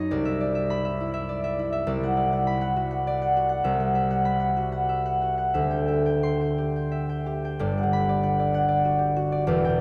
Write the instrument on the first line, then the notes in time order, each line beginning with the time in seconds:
harp
Already playing: F#2 C#4 D#4 C#5 D#5 B5
0.11 C2 D5
0.25 E5
0.41 D5
0.55 E5
0.70 B5
0.85 E5
1.00 E4
1.14 E5
1.29 D5
1.44 E5
1.59 E4
1.72 E5
1.87 C2 D5
2.03 F#5
2.17 D5
2.32 F#5
2.47 B5
2.61 F#5
2.76 F#4
2.91 F#5
3.07 D5
3.22 F#5
3.37 F#4
3.49 F#5
3.64 C2 E5
3.80 F#5
3.95 E5
4.11 F#5
4.25 B5
4.40 F#5
4.57 F#4
4.72 F#5
4.89 E5
5.06 F#5
5.22 F#4
5.38 F#5
5.54 D2 E5
5.70 G5
5.88 E5
6.06 G5
6.23 C6
6.41 G5
6.58 G4
6.76 G5
6.92 E5
7.09 G5
7.26 G4
7.45 G5
7.59 G1 G2 D5
7.78 F#5
7.83 D3
7.93 B5
8.09 D5
8.23 F#5
8.39 D5
8.54 F#5
8.68 D5
8.85 F#4
8.99 G4
9.16 F#4
9.32 D5
9.47 E1 E2 D5
9.65 G5
9.70 B2